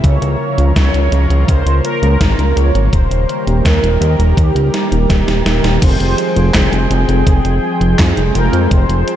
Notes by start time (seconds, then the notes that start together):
0.04 C#2 C#3 F3 A#3 F4 A#4 C#5, kick, closed hi-hat
0.22 C#2, closed hi-hat
0.58 C#2, closed hi-hat
0.76 C#2 C#5, kick, snare, closed hi-hat
0.94 C#2, closed hi-hat
1.12 C#2, closed hi-hat
1.30 C#2, closed hi-hat
1.48 C#2 C5, kick, closed hi-hat
1.66 C#2, closed hi-hat
1.84 A#4, closed hi-hat
2.02 C#2, closed hi-hat
2.21 G#1, kick, snare, closed hi-hat
2.38 C#2, closed hi-hat
2.56 C#2 C#5, closed hi-hat
2.75 G#1, closed hi-hat
2.93 D#1 D#3 G3 G4 A#4 C5, kick, closed hi-hat
3.11 D#1, closed hi-hat
3.29 closed hi-hat
3.47 D#1, closed hi-hat
3.65 D#2 A#4, kick, snare, closed hi-hat
3.83 D#1, closed hi-hat
4.01 D#2, closed hi-hat
4.19 D#1, closed hi-hat
4.37 D#2 G4, kick, closed hi-hat
4.55 C#2, closed hi-hat
4.74 snare, closed hi-hat
4.92 D#1, closed hi-hat
5.10 D#1, kick, snare, closed hi-hat
5.28 D#1, snare, closed hi-hat
5.46 D#1 A#4, snare, closed hi-hat
5.64 D#1, snare, closed hi-hat
5.82 F1 F3 G#3 C4 G#4 C5 G5, kick, closed hi-hat, crash
6.00 F1, closed hi-hat
6.18 closed hi-hat
6.36 F1, closed hi-hat
6.54 F1 G#4, kick, snare, clap, closed hi-hat
6.72 F1, closed hi-hat
6.91 F1, closed hi-hat
7.09 F1, closed hi-hat
7.27 F1 G#4, kick, closed hi-hat
7.45 F1, closed hi-hat
7.81 F1, closed hi-hat
7.99 F2, kick, snare, clap, closed hi-hat
8.17 F1, closed hi-hat
8.35 F1 A#4, closed hi-hat
8.53 F2, closed hi-hat
8.71 F1 C5, kick, closed hi-hat
8.89 F1, closed hi-hat
9.08 closed hi-hat